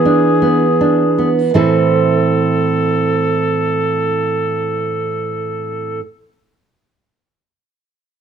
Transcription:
Already playing: E3 B3 G#4
0.05 D4
0.42 B3
0.81 D4
1.18 B3
1.54 A2 E3 C4 E4 A4 C5

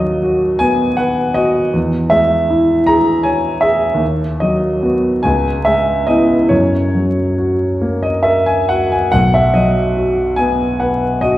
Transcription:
Already playing: D#2 F#3 D#5
0.22 F#4
0.59 B3 G#5
0.97 B4 F#5
1.34 F#4 D#5
1.74 E2
2.10 G#3 E5
2.50 E4
2.86 G#4 A#5
3.23 C#5 G#5
3.61 G#4 E5
3.94 D#2
4.40 F#3 D#5
4.83 B3 F#4
5.23 C#2 G#5
5.65 G#3 E5
6.07 B3 E4 D#5
6.49 F#2 C#5
6.94 F#3
7.38 F#4
7.81 A#3
8.02 D#5
8.23 A#4 E5
8.46 G#5
8.69 F#4 F#5
8.92 G#5
9.12 B1 F#5
9.34 E5
9.54 F#3 D#5
9.97 F#4
10.36 B3 G#5
10.80 B4 F#5
11.21 F#4 D#5

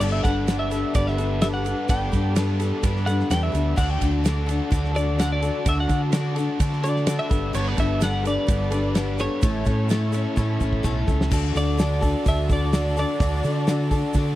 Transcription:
Already playing: D4 G4 A4 B4
0.00 G1 G3 B3 D4 A4 B4 D5, crash, shaker
0.12 E5
0.23 G1 B3 D4 A4 B4 F#5, kick, ride, shaker
0.47 G3 B3 D4 A4 B4, snare, ride, shaker
0.59 E5
0.71 G3 B3 D4 A4 B4, ride, shaker
0.94 G1 G3 B3 D4 A4 B4 D5, kick, ride, shaker
1.07 E5, snare
1.17 G3 B3 D4 A4 B4, ride, shaker
1.41 G3 B3 D4 A4 B4 E5, snare, ride, shaker
1.54 F#5
1.65 B3 A4 B4, ride, shaker
1.69 D4
1.88 G1 G3 B3 D4 A4 B4 G5, kick, ride, shaker
2.12 G2 B3 D4 A4 B4, kick, ride, shaker
2.35 G3 B3 D4 A4 B4, snare, ride, shaker
2.58 G3 B3 D4 A4 B4, ride, shaker
2.82 G2 G3 B3 D4 A4 B4, kick, ride, shaker
2.96 snare
3.06 G3 B3 D4 A4 B4 F#5, ride, shaker
3.19 snare
3.29 E2 G3 B3 D4 A4 B4 G5, snare, ride, shaker
3.43 E5
3.52 D2 B3 D4 A4 B4, ride, shaker
3.76 D2 D3 D4 F#4 A4 D5 F#5, kick, crash, shaker
3.90 G5
3.99 D2 F#4 A4, kick, ride, shaker
4.03 D4
4.23 D3 D4 F#4 A4, snare, ride, shaker
4.46 D3 D4 F#4 A4, ride, shaker
4.70 D2 D3 D4 F#4 A4, kick, ride, shaker
4.84 snare
4.93 D3 D4 F#4 A4 D5, ride
4.97 shaker
5.17 D3 D4 F#4 F#5, snare, ride, shaker
5.21 A4
5.32 D5
5.41 D4 F#4 A4, ride, shaker
5.64 D2 D3 D4 F#4 A4, kick, ride, shaker
5.69 E5
5.80 F#5
5.88 D3 D4 F#4 A4, kick, ride, shaker
6.11 D3 D4 F#4 A4, snare, ride, shaker
6.35 D3 D4 F#4 A4, ride, shaker
6.58 D3 D4 F#4 A4, kick, ride, shaker
6.72 snare
6.82 D3 D4 F#4 A4 D5, ride, shaker
6.96 snare
7.06 D3 D4 F#4, snare, ride, shaker
7.10 A4
7.19 E5
7.29 G1 B3 D4 G4 A4 B4, kick, ride, shaker
7.34 G3
7.54 G1 G3 B3 D4 A4 B4 C#5, crash, shaker
7.68 D5
7.77 G1 B3 D4 A4 B4 E5, kick, ride, shaker
8.01 G3 B3 D4 A4 B4 F#5, snare, ride, shaker
8.24 B3 D4 A4 B4 D5, ride, shaker
8.28 G3
8.47 G1 G3 B3 D4 A4 B4, kick, ride, shaker
8.71 G3 B3 D4 A4 B4, ride, shaker
8.95 G3 B3 D4 A4 B4, snare, ride, shaker
9.18 B3 D4 A4 B4 C#5, ride, shaker
9.42 A1 A2 A3 C#4 E4 A4 C#5, kick, ride, shaker
9.65 A2 C#4 E4 A4, kick, ride, shaker
9.89 A2 A3 C#4 E4 A4, snare, ride, shaker
10.12 A2 A3 C#4 E4 A4, ride, shaker
10.35 A2 A3 C#4 E4, kick, shaker
10.39 A4
10.60 A1 A2 A3 C#4 E4 A4, kick, shaker
10.73 kick
10.83 B1 A2 A3 C#4 E4, kick, shaker
10.88 A4
11.08 C#2 C#4 E4 A4, kick, shaker
11.21 snare
11.30 D2 D3 D4 F#4 A4 D5, kick, crash, shaker
11.55 D2 D4 F#4 A4 D5, open hi-hat, shaker
11.78 D3 D4 F#4 A4, snare, open hi-hat, shaker
12.02 D3 D4 F#4 A4, kick, open hi-hat, shaker
12.24 D2 D3 D4 F#4 A4, kick, open hi-hat, shaker
12.29 E5
12.49 D3 D4 F#4 A4, kick, open hi-hat, shaker
12.53 D5
12.73 D3 D4 F#4 A4, snare, open hi-hat, shaker
12.96 D4 F#4 A4 D5, open hi-hat, shaker
13.20 D2 D3 D4 F#4 A4, kick, open hi-hat, shaker
13.43 D3 D4 F#4 A4, open hi-hat, shaker
13.67 D3 D4 F#4, snare, open hi-hat, shaker
13.71 A4
13.90 D3 D4 F#4 A4, kick, open hi-hat, shaker
14.13 D3 D4 F#4 A4, kick, open hi-hat, shaker

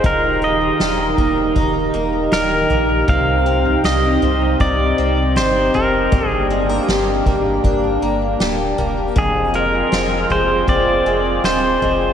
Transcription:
Already playing: F3 G#3 C4
0.04 D#1 D#3 D#4 G4 A#4 A#5, kick, floor tom
0.42 A#3 D#5
0.80 D#1 G3, snare
1.17 D#1 A#3, kick, floor tom
1.56 D#1 D#4, kick, floor tom
1.94 D#1 A#3
2.32 D1 G3 A#4, snare
2.69 A#1 A#3, floor tom
3.08 C2 C3 C4 F5 G5, kick, floor tom
3.46 C4
3.65 floor tom
3.84 C2 G3 D#5, snare
4.22 C2 C4, floor tom
4.60 C2 D#4 D5, kick, floor tom
4.98 C2 C4
5.36 G1 G3 C5, snare
5.74 F1 C4 A#4, floor tom
6.12 G1 G2 A#3 D4, kick, floor tom
6.28 G#4
6.50 G#3
6.69 A#3
6.87 G1 G3, snare
7.26 G1 A#3, kick, floor tom
7.64 G1 D4, kick, floor tom
8.02 G1 A#3
8.39 D1 G3, snare
8.77 D#1 A#3, floor tom
9.15 F1 F2 C4 F4 G#4, kick, floor tom
9.54 G#3 A#4
9.91 F1 F3, snare
10.29 F1 G#3 C5, floor tom
10.67 F1 C4 D5, kick, floor tom
11.05 F1 G#3
11.43 D1 F3 C5, snare
11.81 F1 G#3, floor tom

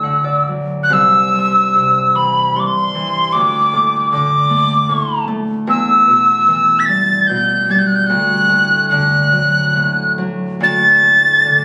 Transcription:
Already playing: D2 A5 E6
0.03 D3 F#5
0.24 D5
0.48 F#3
0.83 F#6
0.90 C2 E6
1.33 G2
1.75 C3
2.15 E3 B5
2.56 G2 C6 D6
2.66 C6
2.95 E3
3.32 D2 D6
3.73 A2
4.12 D3 D6
4.50 A3
4.89 A2
5.28 A3
5.67 E2 E6
6.07 B2
6.48 E3
6.79 B6
6.85 G3 A6
7.27 B2 G6
7.70 G3 A6
7.78 G6
7.86 F#6
7.95 G6
8.06 D2 F#6
8.49 A2
8.89 D3 F#6
9.32 F#3
9.75 A2
10.18 F#3
10.60 D2 A6
11.02 A2
11.45 D3

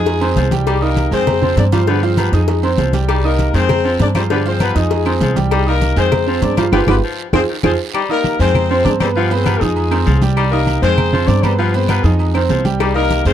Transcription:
Already playing: F2 G#3 D#4 F4 G#4 D#5 D#6
0.06 cowbell, high conga, low agogo, long guiro
0.21 D#3 C4 C5 C6, high conga, low agogo
0.36 C2 F3, cowbell, high conga, low timbale, short guiro
0.51 G3 G4 G5, cowbell, high conga, low agogo, short guiro
0.66 G3 D#4 G4, cowbell, high conga, low agogo, long guiro
0.81 A#3 D#4 G4 A#4 D#5 D#6, high conga
0.97 cowbell, high conga, low timbale, low agogo, short guiro
1.11 F2 D#3 G#3 C4 G#4 C5 G#5, low agogo, short guiro
1.27 cowbell, high conga, low conga, low agogo, long guiro
1.41 F3 C4 C5 C6, high conga, low conga
1.57 G2 D4 G#4 D5, cowbell, high conga, low timbale, low agogo, short guiro
1.72 F3 G3 C4 F4 G#4 C5 F5, cowbell, high conga, low agogo, short guiro
1.87 D3 F3 B3 D4 G4 B4 D5, cowbell, high conga, long guiro
2.02 F3 C4 F4 G#4 C5 F5, high conga, low agogo
2.17 F3 B3 G4 B4, cowbell, high conga, low timbale, low agogo, short guiro
2.32 F2 G#3 D#4 F4 G#4 D#5 D#6, cowbell, high conga, short guiro
2.48 cowbell, high conga, low agogo, long guiro
2.63 D#3 C4 C5 C6, high conga, low agogo
2.78 C2 F3, cowbell, high conga, low timbale, short guiro
2.93 G3 G4 G5, cowbell, high conga, low agogo, short guiro
3.08 G3 D#4 G4, cowbell, high conga, low agogo, long guiro, claves
3.24 A#3 D#4 G4 A#4 D#5 D#6, high conga
3.39 cowbell, high conga, low timbale, low agogo, short guiro
3.54 F2 D#3 G#3 C4 G#4 C5 G#5, low agogo, short guiro
3.69 cowbell, high conga, low conga, low agogo, long guiro, claves
3.84 F3 C4 C5 C6, high conga
3.99 G2 D4 G#4 D5, cowbell, high conga, low timbale, low agogo, short guiro
4.15 F3 G3 C4 F4 G#4 C5 F5, cowbell, high conga, low agogo, short guiro, claves
4.30 D3 F3 B3 D4 G4 B4 D5, cowbell, high conga, long guiro
4.45 F3 C4 F4 G#4 C5 F5, high conga, low agogo
4.60 F3 B3 G4 B4, cowbell, high conga, low timbale, low agogo, short guiro, claves
4.75 F2 G#3 D#4 F4 G#4 D#5 D#6, cowbell, high conga, short guiro
4.90 cowbell, high conga, low agogo, long guiro
5.06 D#3 C4 C5 C6, high conga, low agogo, claves
5.21 C2 F3, cowbell, high conga, low timbale, short guiro
5.36 G3 G4 G5, cowbell, high conga, low agogo, short guiro
5.51 G3 D#4 G4, cowbell, low agogo, long guiro, claves
5.66 A#3 D#4 G4 A#4 D#5 D#6, high conga
5.81 cowbell, high conga, low timbale, low agogo, short guiro
5.96 F2 D#3 G#3 C4 G#4 C5 G#5, low agogo, short guiro
6.12 cowbell, high conga, low conga, low agogo, long guiro, claves
6.27 F3 C4 C5 C6, high conga
6.42 G2 D4 G#4 D5, cowbell, high conga, low timbale, low agogo, short guiro
6.57 F3 G3 C4 F4 G#4 C5 F5, cowbell, high conga, low agogo, short guiro, claves
6.72 G1 F3 B3 F4 G4 B4, cowbell, high conga, high timbale, long guiro, claves
6.87 G1 B3 F4 G4 B4, cowbell, high conga, high timbale, long guiro, claves
7.03 F3
7.33 F2 C4 F4 G#4 C5, cowbell, high conga, high timbale, long guiro, claves
7.49 D#3
7.63 F2 F3 C4 F4 G#4 C5, cowbell, high conga, high timbale, long guiro, claves
7.94 G3 D#4 G4, high conga, low agogo, long guiro, claves
8.09 A#3 D#4 G4 A#4 D#5 D#6, high conga
8.24 high conga, low timbale, low agogo, short guiro
8.39 F2 D#3 G#3 C4 G#4 C5 G#5, low agogo, short guiro
8.55 high conga, low conga, low agogo, long guiro, claves
8.70 F3 C4 C5 C6, high conga
8.85 G2 D4 G#4 D5, high conga, low timbale, low agogo, short guiro
8.99 G3 B3 C4 G#4 B4 C5 B5, high conga, low agogo, short guiro, claves
9.15 F3 B3 F4 G4 B4 F5, high conga, long guiro
9.30 B3 C4 G#4 B4 C5 B5, high conga, low agogo
9.45 F3 B3 G4 B4, high conga, low timbale, low agogo, short guiro, claves
9.60 F2 G#3 D#4 F4 G#4 D#5 D#6, high conga, short guiro
9.76 high conga, low agogo, long guiro
9.91 D#3 C4 C5 C6, high conga, low agogo, claves
10.06 C2 F3, high conga, low timbale, short guiro
10.21 G3 G4 G5, high conga, low agogo, short guiro
10.36 G3 D#4 G4, high conga, low agogo, long guiro, claves
10.52 A#3 D#4 G4 A#4 D#5 D#6, high conga
10.67 high conga, low timbale, low agogo, short guiro
10.82 F2 D#3 G#3 C4 G#4 C5 G#5, low agogo, short guiro
10.98 high conga, low conga, low agogo, long guiro, claves
11.13 F3 C4 C5 C6, high conga, low conga
11.27 G2 D4 G#4 D5, high conga, low timbale, low agogo, short guiro
11.42 G3 B3 C4 G#4 B4 C5 B5, high conga, low agogo, short guiro, claves
11.58 F3 B3 F4 G4 B4 F5, high conga, long guiro
11.73 B3 C4 G#4 B4 C5 B5, high conga, low agogo
11.89 F3 B3 G4 B4, high conga, low timbale, low agogo, short guiro, claves
12.03 F2 G#3 D#4 F4 G#4 D#5 D#6, high conga, short guiro
12.19 high conga, low agogo, long guiro
12.34 D#3 C4 C5 C6, high conga, low agogo, claves
12.49 C2 F3, high conga, low timbale, short guiro
12.65 G3 G4 G5, high conga, low agogo, short guiro
12.80 G3 D#4 G4, cowbell, high conga, low agogo, long guiro, claves
12.95 A#3 D#4 G4 A#4 D#5 D#6, high conga
13.10 cowbell, high conga, low timbale, low agogo, short guiro
13.25 F2 D#3 G#3 C4 G#4 C5 G#5, low agogo, short guiro

